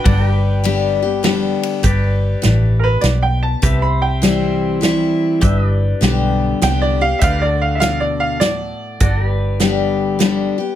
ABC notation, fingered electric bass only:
X:1
M:3/4
L:1/8
Q:"Swing" 1/4=101
K:G
V:1 name="Fingered electric bass" clef=bass
G,,,6 | G,,,2 A,,,2 B,,,2 | C,,6 | G,,,2 B,,,2 C,,2 |
D,,6 | G,,,6 |]